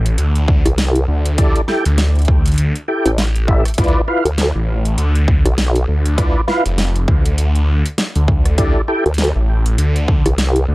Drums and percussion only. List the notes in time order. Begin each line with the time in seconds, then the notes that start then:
0.06 closed hi-hat
0.18 closed hi-hat
0.36 closed hi-hat
0.48 kick
0.66 cross-stick, closed hi-hat
0.78 snare, closed hi-hat
0.96 closed hi-hat
1.26 closed hi-hat
1.38 kick, closed hi-hat
1.56 closed hi-hat
1.68 cross-stick, snare
1.85 closed hi-hat
1.98 snare, closed hi-hat
2.15 closed hi-hat
2.19 closed hi-hat
2.22 closed hi-hat
2.25 kick, closed hi-hat
2.46 closed hi-hat
2.48 closed hi-hat
2.52 closed hi-hat
2.54 closed hi-hat
2.56 closed hi-hat
2.58 closed hi-hat
2.76 closed hi-hat
3.06 closed hi-hat
3.18 snare, closed hi-hat
3.36 closed hi-hat
3.48 kick
3.65 cross-stick, closed hi-hat
3.68 closed hi-hat
3.74 closed hi-hat
3.78 kick, closed hi-hat
3.84 closed hi-hat
3.88 closed hi-hat
4.08 cross-stick
4.26 closed hi-hat
4.38 snare, closed hi-hat
4.85 closed hi-hat
4.98 closed hi-hat
5.15 closed hi-hat
5.28 kick
5.46 cross-stick, closed hi-hat
5.58 snare, closed hi-hat
5.76 closed hi-hat
6.06 closed hi-hat
6.18 kick, closed hi-hat
6.48 cross-stick, snare
6.66 closed hi-hat
6.78 snare, closed hi-hat
6.96 closed hi-hat
7.08 kick
7.26 closed hi-hat
7.38 closed hi-hat
7.55 closed hi-hat
7.86 closed hi-hat
7.98 snare, closed hi-hat
8.16 closed hi-hat
8.28 kick
8.45 cross-stick, closed hi-hat
8.58 kick, closed hi-hat
8.88 cross-stick
9.06 closed hi-hat
9.14 closed hi-hat
9.18 snare, closed hi-hat
9.24 closed hi-hat
9.66 closed hi-hat
9.78 closed hi-hat
9.96 closed hi-hat
10.08 kick
10.26 cross-stick, closed hi-hat
10.38 snare, closed hi-hat
10.56 closed hi-hat